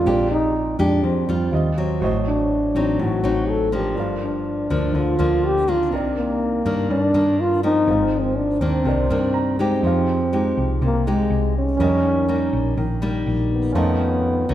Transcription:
0.00 1.48 C4 soft
0.00 0.30 F4 medium
0.05 0.75 A#1 medium
0.05 1.01 A#2 soft
0.05 0.54 G#3 soft
0.05 0.54 D4 soft
0.05 1.49 G4 soft
0.05 0.55 G4 medium
0.05 1.51 D5 soft
0.31 0.76 D#4 medium
0.79 1.01 F2 medium
0.79 1.24 G#3 medium
0.79 1.06 D4 medium
0.79 1.24 D4 medium
0.79 1.24 G4 medium
1.03 1.26 F2 medium
1.03 1.50 F2 medium
1.03 1.77 C4 medium
1.28 1.51 F2 medium
1.28 1.73 G3 medium
1.28 1.73 F4 medium
1.52 2.03 D#2 medium
1.52 2.01 F4 soft
1.52 2.01 G4 soft
1.52 2.02 D#5 soft
1.78 2.71 F#3 medium
1.78 2.71 C4 medium
2.00 2.70 A1 medium
2.00 2.97 A2 soft
2.00 3.92 F#4 soft
2.00 3.93 C5 soft
2.04 3.94 D#5 medium
2.27 3.02 D4 medium
2.75 2.97 A1 medium
2.75 3.20 F#3 medium
2.75 3.20 C4 medium
2.75 3.20 D#4 soft
2.99 3.21 A1 medium
2.99 3.94 A2 medium
2.99 3.51 F#4 medium
3.24 3.97 A1 medium
3.24 3.68 F#3 medium
3.24 3.69 C4 soft
3.24 3.69 D#4 medium
3.50 3.73 A4 medium
3.72 4.66 F3 soft
3.72 4.66 A#3 medium
3.72 4.66 D4 medium
3.72 3.96 G4 medium
3.94 4.66 G1 medium
3.94 4.92 G2 soft
3.94 5.87 D4 soft
3.94 5.88 G4 soft
3.94 5.89 A#4 soft
4.00 5.90 F5 soft
4.23 4.98 D4 medium
4.70 4.93 D2 medium
4.70 5.15 F3 medium
4.70 5.15 A#3 medium
4.70 5.15 D4 medium
4.94 5.17 D2 medium
4.94 5.90 D3 medium
4.94 5.47 F4 medium
5.19 5.92 D2 medium
5.19 5.64 F3 medium
5.19 5.64 A#3 medium
5.19 5.64 D4 medium
5.46 5.72 G4 loud
5.68 6.61 D#3 soft
5.68 6.62 A#3 soft
5.68 6.62 D4 medium
5.68 5.94 F4 medium
5.90 6.62 C2 medium
5.90 6.88 C3 soft
5.90 7.83 C4 soft
5.90 7.85 A#4 soft
5.96 7.86 D5 soft
6.18 6.87 A#3 medium
6.65 6.88 G2 medium
6.65 7.11 D#3 medium
6.65 7.11 A#3 medium
6.65 7.11 D4 medium
6.90 7.13 G2 medium
6.90 7.86 G2 soft
6.90 7.42 D4 medium
7.14 7.89 G2 medium
7.14 7.59 D#3 medium
7.14 7.59 A#3 medium
7.14 7.60 D4 medium
7.40 7.63 F4 loud
7.63 8.57 F3 medium
7.63 8.57 A#3 soft
7.63 8.58 C4 medium
7.63 8.22 D#4 loud
7.85 8.57 G#1 medium
7.85 8.83 G#2 soft
7.85 8.81 C4 soft
7.85 8.83 G#4 soft
7.89 8.84 A#4 soft
7.89 8.85 F5 soft
8.20 8.38 C4 medium
8.37 8.62 D4 medium
8.61 8.84 D#2 medium
8.61 9.06 D#3 medium
8.61 9.06 A#3 medium
8.61 9.59 C4 medium
8.61 9.07 D4 medium
8.83 9.08 C2 medium
8.83 9.81 C3 soft
8.83 9.80 C4 soft
8.87 9.82 A#4 soft
8.87 9.83 D5 medium
9.10 9.79 G2 medium
9.10 9.55 D#3 medium
9.10 9.56 A#3 soft
9.10 9.56 D4 medium
9.34 9.80 A#5 soft
9.59 10.31 G#3 medium
9.59 10.78 C4 medium
9.59 10.31 D#4 soft
9.59 10.31 G4 medium
9.81 10.53 F2 medium
9.81 10.79 F3 soft
9.81 11.74 D#4 soft
9.81 11.75 G4 soft
9.87 11.77 F5 medium
10.33 10.81 G#3 soft
10.33 10.81 D#4 soft
10.33 10.82 G4 medium
10.57 10.80 C2 medium
10.81 11.27 C2 medium
10.81 11.77 C3 medium
10.81 11.11 A#3 medium
11.07 11.76 G#3 medium
11.07 11.57 G#3 medium
11.07 11.76 D#4 medium
11.07 11.76 G4 medium
11.30 11.76 C2 medium
11.58 12.99 C#4 loud
11.77 12.49 F2 medium
11.77 12.75 D#3 soft
11.77 12.25 G3 medium
11.77 12.25 A#3 medium
11.77 13.70 C#4 soft
11.77 13.71 G4 soft
11.77 13.72 A#4 soft
11.81 12.25 D#4 soft
11.81 13.73 D#5 soft
12.28 12.77 G3 soft
12.28 12.77 A#3 medium
12.28 12.77 D#4 medium
12.53 12.76 A#1 medium
12.77 13.23 A#1 medium
12.77 13.73 D#3 medium
13.02 13.71 G3 medium
13.02 13.71 A#3 medium
13.02 13.71 D#4 medium
13.27 13.72 A#1 medium
13.53 14.54 B3 medium
13.72 14.44 F2 medium
13.72 14.54 F2 soft
13.72 14.44 D#3 medium
13.72 14.45 A3 soft
13.72 14.54 C#4 soft
13.72 14.45 C#4 medium
13.72 14.54 F4 soft
13.72 14.54 A5 soft
13.78 14.54 D#5 soft
14.49 14.54 C#2 medium
14.49 14.54 D#3 medium
14.49 14.54 A3 medium
14.49 14.54 C#4 medium

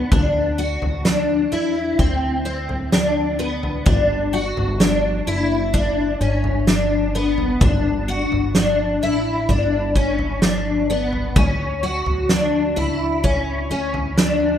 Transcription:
0.00 0.12 B3 medium
0.11 0.78 D2 medium
0.11 0.59 D4 medium
0.11 kick medium
0.11 floor tom medium
0.58 1.05 F#4 medium
0.82 1.49 D2 medium
0.82 floor tom medium
1.05 1.52 D4 medium
1.05 snare loud
1.52 1.97 E2 medium
1.52 1.99 E4 medium
1.99 3.82 D2 medium
1.99 2.44 C4 medium
1.99 kick medium
1.99 floor tom medium
2.45 2.92 C4 medium
2.69 floor tom medium
2.92 3.39 D4 medium
2.92 snare loud
3.39 3.85 B3 medium
3.63 floor tom soft
3.86 4.53 G1 medium
3.86 4.33 D4 medium
3.86 kick medium
3.86 floor tom medium
4.33 4.80 F#4 medium
4.57 5.24 G1 medium
4.57 floor tom medium
4.80 5.27 D4 medium
4.80 snare loud
5.27 6.17 F#1 medium
5.27 5.74 E4 medium
5.74 6.20 D4 medium
5.74 kick medium
5.74 floor tom medium
6.21 7.57 G1 medium
6.21 6.67 C#4 medium
6.44 floor tom medium
6.67 7.15 D4 medium
6.67 snare loud
7.15 7.61 B3 medium
7.38 floor tom medium
7.61 8.28 G1 medium
7.61 8.08 D4 medium
7.61 kick medium
7.61 floor tom loud
8.08 8.55 F#4 medium
8.32 8.99 G1 medium
8.32 floor tom medium
8.55 9.02 D4 medium
8.55 snare loud
9.02 9.47 A1 medium
9.02 9.49 E4 medium
9.49 11.33 G1 loud
9.49 9.95 D4 medium
9.49 kick medium
9.49 floor tom medium
9.96 10.43 C#4 medium
9.96 kick medium
10.19 floor tom medium
10.42 10.89 D4 medium
10.42 snare loud
10.90 11.36 B3 medium
11.13 floor tom medium
11.36 12.03 D2 medium
11.36 11.83 C#4 medium
11.36 kick loud
11.36 floor tom loud
11.83 12.30 F#4 medium
12.06 12.73 D2 medium
12.06 floor tom medium
12.29 12.77 D4 medium
12.29 snare loud
12.76 13.67 C#2 medium
12.76 13.24 E4 medium
12.76 floor tom soft
13.24 13.70 C#4 medium
13.24 kick medium
13.24 floor tom medium
13.70 14.58 D2 medium
13.70 14.17 C#4 medium
13.94 floor tom medium
14.18 14.58 D4 medium
14.18 snare loud

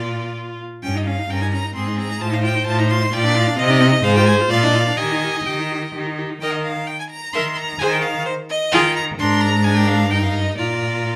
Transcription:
0.00 0.63 A#2 medium
0.00 0.58 F4 medium
0.00 0.61 F4 medium
0.00 0.34 D5 loud
0.83 1.25 G2 medium
0.83 0.96 C#4 medium
0.83 0.98 G5 loud
0.95 1.08 D#4 medium
0.95 1.06 D#5 medium
1.06 1.20 C#4 medium
1.06 1.31 F5 loud
1.18 1.30 D#4 medium
1.30 1.70 G2 medium
1.30 1.43 C#4 medium
1.30 1.73 A#4 medium
1.30 1.41 G5 loud
1.41 1.54 D#4 medium
1.41 1.46 G#5 loud
1.52 1.65 C#4 medium
1.52 1.75 A#5 loud
1.64 1.74 D#4 medium
1.75 2.16 G#2 medium
1.75 1.89 C4 medium
1.75 2.23 G#4 medium
1.75 1.98 C6 medium
1.87 1.99 D#4 medium
1.98 2.11 C4 medium
1.98 2.22 A#5 loud
2.09 2.20 D#4 medium
2.20 2.62 A2 medium
2.20 2.33 F4 medium
2.20 3.12 C5 loud
2.20 2.35 A5 loud
2.32 2.45 D#4 medium
2.32 2.43 F5 loud
2.43 2.56 F4 medium
2.43 2.66 G5 loud
2.55 2.66 D#4 medium
2.67 3.08 A2 loud
2.67 2.80 F4 medium
2.67 2.81 A5 loud
2.79 2.92 D#4 medium
2.79 2.89 A#5 loud
2.90 3.03 F4 medium
2.90 3.15 C6 loud
3.02 3.12 D#4 medium
3.13 3.53 A#2 loud
3.13 3.25 F4 medium
3.13 3.57 D5 loud
3.13 3.37 G5 loud
3.24 3.37 D4 medium
3.36 3.48 F4 medium
3.36 3.60 F5 loud
3.47 3.58 D4 medium
3.58 3.99 C3 loud
3.58 3.71 C4 medium
3.58 4.03 D#5 loud
3.58 3.72 D#5 loud
3.70 3.82 D#4 loud
3.70 3.83 D5 loud
3.81 3.94 C4 medium
3.81 4.05 D#5 loud
3.92 4.03 D#4 medium
4.03 4.46 G#2 loud
4.03 4.18 G#4 loud
4.03 4.52 C5 loud
4.03 4.15 F5 loud
4.16 4.30 F4 medium
4.16 4.26 G5 loud
4.26 4.42 G#4 medium
4.26 4.34 G#5 loud
4.40 4.51 F4 medium
4.50 4.93 A#2 loud
4.50 4.65 F4 medium
4.50 4.99 D5 loud
4.50 4.65 F5 loud
4.63 4.76 D4 medium
4.63 4.76 D#5 loud
4.74 4.89 F4 medium
4.74 4.99 F5 loud
4.87 4.99 D4 medium
4.97 5.41 D#3 loud
4.97 5.13 G4 medium
4.97 6.18 D#5 loud
4.97 5.47 G#5 loud
5.11 5.25 D#4 medium
5.24 5.38 G4 medium
5.36 5.47 D#4 medium
5.46 5.89 D#3 medium
5.46 5.61 G4 medium
5.46 5.94 G5 medium
5.59 5.73 D#4 medium
5.72 5.84 G4 medium
5.83 5.94 D#4 medium
5.95 6.37 D#3 medium
5.95 6.08 G4 medium
6.06 6.20 D#4 medium
6.18 6.32 G4 medium
6.30 6.42 D#4 medium
6.41 6.81 D#3 medium
6.41 6.64 A#4 medium
6.41 6.64 D#5 medium
6.41 6.55 G5 loud
6.53 6.62 D#5 medium
6.63 6.88 F5 loud
6.87 6.99 G5 loud
7.00 7.04 G#5 loud
7.10 7.35 A#5 loud
7.33 7.73 D#3 medium
7.33 7.56 A#4 medium
7.33 7.55 E5 medium
7.33 7.58 C6 loud
7.57 7.80 A#5 loud
7.79 8.19 D#3 loud
7.79 8.02 G#4 medium
7.79 8.03 C5 medium
7.79 7.94 G#5 loud
7.93 8.04 G5 loud
8.02 8.25 F5 loud
8.26 8.34 C5 loud
8.49 8.74 D#5 loud
8.72 9.11 D#3 loud
8.72 8.94 F4 loud
8.72 8.94 G#4 loud
8.72 8.95 G5 loud
8.96 9.04 A#5 loud
9.19 10.13 G#2 loud
9.19 9.62 D4 medium
9.19 9.62 A#4 loud
9.19 9.42 C6 loud
9.41 9.66 A#5 loud
9.64 10.14 D4 loud
9.64 10.10 A#4 loud
9.64 9.78 G#5 loud
9.77 9.89 G5 loud
9.88 10.12 F5 loud
10.11 10.58 G2 loud
10.11 10.60 D#4 medium
10.11 10.57 A#4 medium
10.11 10.25 G5 loud
10.23 10.35 F5 loud
10.34 10.57 D#5 loud
10.57 11.16 A#2 medium
10.57 11.16 F4 medium
10.57 11.16 A#4 medium
10.57 11.16 D5 loud

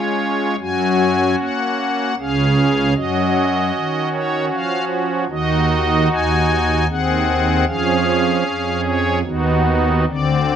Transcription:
0.00 0.57 G#3 medium
0.00 0.55 C#4 soft
0.00 0.55 F4 soft
0.00 0.56 C#5 medium
0.60 1.36 F#2 medium
0.60 1.36 F#3 medium
0.60 2.13 C#4 soft
0.60 2.13 F#4 soft
0.60 1.36 G#5 loud
1.39 2.15 A#3 medium
1.39 2.15 F#5 medium
2.18 2.94 C#2 medium
2.18 2.94 C#3 medium
2.18 2.94 C#4 soft
2.18 2.94 G#4 medium
2.18 2.94 F5 loud
2.96 3.71 F#2 medium
2.96 3.71 F#3 medium
2.96 5.25 C#4 medium
2.96 5.25 F#4 medium
2.96 4.09 D#5 loud
3.76 4.50 D#3 medium
4.13 4.46 C#5 medium
4.53 5.27 F3 medium
4.53 4.85 F5 loud
5.30 6.08 D#2 medium
5.30 6.08 D#3 medium
5.30 6.85 D#4 medium
5.30 6.85 F#4 medium
5.30 6.09 D#5 loud
6.12 6.87 D#2 medium
6.12 6.87 G#5 loud
6.89 7.65 D#2 medium
6.89 7.65 D#3 medium
6.89 7.65 C4 medium
6.89 7.65 G#4 medium
6.89 7.65 F#5 loud
7.66 8.44 F2 medium
7.66 8.43 F3 medium
7.66 9.21 C#4 medium
7.66 9.21 G#4 medium
7.66 8.81 F5 loud
8.47 9.23 F2 medium
8.86 9.19 C#5 loud
9.24 10.05 D#2 medium
9.24 10.05 D#3 medium
9.24 10.05 B3 medium
9.24 10.05 D#4 medium
9.24 10.05 F#4 loud
10.08 10.56 D2 medium
10.08 10.56 D3 medium
10.08 10.56 C4 medium
10.08 10.56 D5 loud

